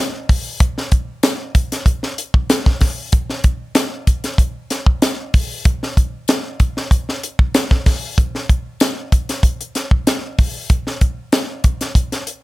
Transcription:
0.29 kick medium
0.29 open hi-hat medium
0.60 kick loud
0.60 closed hi-hat loud
0.78 snare soft
0.92 kick medium
0.92 closed hi-hat medium
1.23 snare loud
1.23 closed hi-hat medium
1.23 tambourine medium
1.55 kick medium
1.55 closed hi-hat medium
1.72 snare soft
1.72 closed hi-hat medium
1.86 kick medium
1.86 closed hi-hat medium
2.03 snare soft
2.18 closed hi-hat medium
2.34 kick medium
2.50 snare loud
2.50 closed hi-hat medium
2.50 tambourine loud
2.66 kick loud
2.66 snare soft
2.81 kick medium
2.81 snare soft
2.81 open hi-hat medium
3.12 kick loud
3.12 closed hi-hat loud
3.30 snare soft
3.44 kick medium
3.44 closed hi-hat medium
3.75 snare loud
3.75 closed hi-hat medium
3.75 tambourine loud
4.07 kick medium
4.07 closed hi-hat medium
4.24 snare soft
4.24 closed hi-hat medium
4.38 kick medium
4.38 closed hi-hat medium
4.70 snare soft
4.70 closed hi-hat medium
4.86 kick medium
5.02 snare medium
5.02 closed hi-hat medium
5.02 tambourine loud
5.34 kick medium
5.34 open hi-hat medium
5.65 kick loud
5.65 closed hi-hat loud
5.83 snare soft
5.97 kick medium
5.97 closed hi-hat medium
6.28 snare loud
6.28 closed hi-hat loud
6.28 tambourine loud
6.60 kick medium
6.60 closed hi-hat medium
6.77 snare soft
6.91 kick medium
6.91 closed hi-hat medium
7.09 snare soft
7.23 closed hi-hat medium
7.39 kick medium
7.54 snare loud
7.54 closed hi-hat medium
7.54 tambourine loud
7.71 kick medium
7.71 snare soft
7.86 kick medium
7.86 snare soft
7.86 open hi-hat medium
8.18 kick loud
8.18 closed hi-hat loud
8.35 snare soft
8.49 kick medium
8.49 closed hi-hat medium
8.80 snare loud
8.80 closed hi-hat medium
8.80 tambourine loud
9.12 kick medium
9.12 closed hi-hat medium
9.29 snare soft
9.29 closed hi-hat medium
9.43 kick medium
9.43 closed hi-hat medium
9.61 closed hi-hat soft
9.75 snare soft
9.75 closed hi-hat medium
9.91 kick loud
10.07 snare medium
10.07 closed hi-hat medium
10.07 tambourine loud
10.39 kick medium
10.39 open hi-hat medium
10.70 kick loud
10.70 closed hi-hat loud
10.87 snare soft
11.01 kick medium
11.01 closed hi-hat medium
11.32 snare loud
11.32 closed hi-hat medium
11.32 tambourine loud
11.64 kick medium
11.64 closed hi-hat medium
11.81 snare soft
11.81 closed hi-hat medium
11.95 kick medium
11.95 closed hi-hat medium
12.12 snare soft
12.12 closed hi-hat soft
12.27 closed hi-hat medium

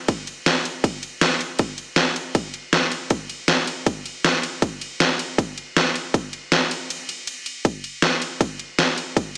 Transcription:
0.08 kick loud
0.08 ride medium
0.27 ride medium
0.46 snare loud
0.46 ride medium
0.65 ride medium
0.84 kick loud
0.84 ride medium
1.03 ride medium
1.21 snare loud
1.21 ride loud
1.41 ride medium
1.59 kick loud
1.59 ride medium
1.78 ride medium
1.96 snare loud
1.96 ride medium
2.16 ride medium
2.35 kick loud
2.35 ride medium
2.54 ride medium
2.73 snare loud
2.73 ride medium
2.92 ride medium
3.10 kick loud
3.10 ride medium
3.30 ride medium
3.48 snare loud
3.48 ride medium
3.67 ride medium
3.86 kick loud
3.86 ride medium
4.06 ride medium
4.25 snare loud
4.25 ride loud
4.43 ride medium
4.62 kick loud
4.62 ride medium
4.81 ride medium
5.00 snare loud
5.00 ride medium
5.19 ride medium
5.38 kick loud
5.38 ride medium
5.58 ride medium
5.77 snare loud
5.77 ride medium
5.95 ride medium
6.14 kick loud
6.14 ride medium
6.33 ride medium
6.52 snare loud
6.52 ride medium
6.71 ride medium
6.90 ride loud
7.09 ride medium
7.27 ride medium
7.46 ride medium
7.65 kick loud
7.65 ride medium
7.84 ride medium
8.02 snare loud
8.02 ride medium
8.22 ride medium
8.41 kick loud
8.41 ride medium
8.59 ride medium
8.79 snare loud
8.79 ride medium
8.98 ride medium
9.17 kick loud
9.17 ride medium

